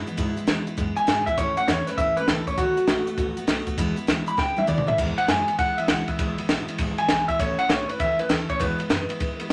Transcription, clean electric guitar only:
0.97 G#5
1.26 E5
1.38 C#5
1.57 F#5
1.68 C#5
1.87 B4
1.98 E5
2.17 B4
2.29 A4
2.48 C#5
2.58 F#4
4.28 B5
4.39 G5
4.58 E5
4.69 D5
4.88 E5
5.18 F#5
5.29 G#5
5.59 F#5
5.78 E5
5.89 F#5
6.08 E5
6.99 G#5
7.28 E5
7.40 C#5
7.59 F#5
7.69 C#5
7.89 B4
8.00 E5
8.20 B4
8.29 A4
8.50 C#5
8.60 B4

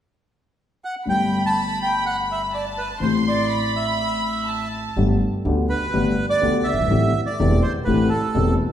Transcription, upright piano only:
1.05 G1 G2 D3 A3 B3 G4
3.00 A1 A2 E3 A3 C4 G4
4.96 G1 G2 D3 A3 B3 G4
5.45 D2 D3 A3 B3 G4
5.93 G1 G2 D3 A3 B3 G4
6.42 D2 D3 A3 B3 G4
6.73 F#1
6.80 G1
6.86 G#1
6.90 A1 A2 E3 A3 C4 G4
7.39 E1 E2 E3 A3 C4 G4
7.86 A1 A2 E3 A3 C4 G4
8.35 E1 E2 E3 A3 C4 G4
8.66 A1

